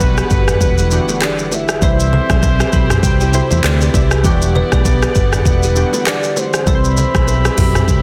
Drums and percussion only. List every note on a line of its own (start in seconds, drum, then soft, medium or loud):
0.00 kick loud
0.00 high bongo medium
0.00 shaker medium
0.18 cross-stick loud
0.18 shaker medium
0.30 kick loud
0.30 shaker medium
0.48 cross-stick loud
0.48 mid tom medium
0.48 shaker medium
0.61 kick medium
0.61 low conga medium
0.61 shaker medium
0.78 shaker medium
0.91 shaker medium
1.09 low bongo medium
1.09 shaker medium
1.21 cross-stick loud
1.21 clap medium
1.21 high bongo medium
1.21 shaker medium
1.39 shaker soft
1.52 high bongo medium
1.52 low bongo medium
1.52 shaker medium
1.69 cross-stick loud
1.69 shaker medium
1.82 kick loud
1.82 low conga medium
1.82 shaker medium
2.00 shaker soft
2.13 low conga medium
2.30 kick loud
2.30 cross-stick loud
2.30 low bongo medium
2.30 shaker soft
2.43 kick loud
2.43 high bongo medium
2.43 shaker medium
2.60 cross-stick loud
2.60 shaker medium
2.73 kick medium
2.73 shaker medium
2.90 cross-stick loud
2.90 mid tom medium
2.90 shaker medium
3.03 kick medium
3.03 low conga medium
3.03 shaker medium
3.21 shaker medium
3.33 shaker medium
3.51 low bongo medium
3.51 shaker medium
3.64 cross-stick loud
3.64 clap loud
3.64 high bongo medium
3.64 shaker medium
3.81 shaker soft
3.94 kick loud
3.94 high bongo medium
3.94 low bongo medium
3.94 shaker medium
4.11 cross-stick loud
4.11 shaker medium
4.24 kick loud
4.24 low conga medium
4.24 shaker medium
4.42 shaker medium
4.55 low conga medium
4.72 kick loud
4.72 cross-stick loud
4.72 low bongo medium
4.72 shaker soft
4.85 kick loud
4.85 high bongo medium
4.85 shaker medium
5.02 cross-stick loud
5.02 shaker medium
5.15 kick loud
5.15 shaker medium
5.33 cross-stick medium
5.33 mid tom medium
5.33 shaker medium
5.45 kick loud
5.45 low conga medium
5.45 shaker medium
5.63 shaker medium
5.76 shaker medium
5.93 low bongo medium
5.93 shaker medium
6.06 cross-stick loud
6.06 clap loud
6.06 high bongo medium
6.06 shaker medium
6.23 shaker soft
6.36 high bongo medium
6.36 low bongo medium
6.36 shaker medium
6.54 cross-stick loud
6.54 shaker medium
6.67 kick loud
6.67 low conga medium
6.67 shaker medium
6.84 shaker medium
6.97 low conga medium
6.97 shaker medium
7.15 kick loud
7.15 cross-stick loud
7.15 low bongo medium
7.15 shaker soft
7.28 high bongo medium
7.28 shaker medium
7.45 cross-stick loud
7.45 shaker medium
7.58 kick loud
7.58 mid tom medium
7.58 open hi-hat medium
7.58 shaker medium
7.75 cross-stick medium
7.75 mid tom medium
7.75 shaker medium
7.88 kick loud
7.88 low conga medium
7.88 shaker medium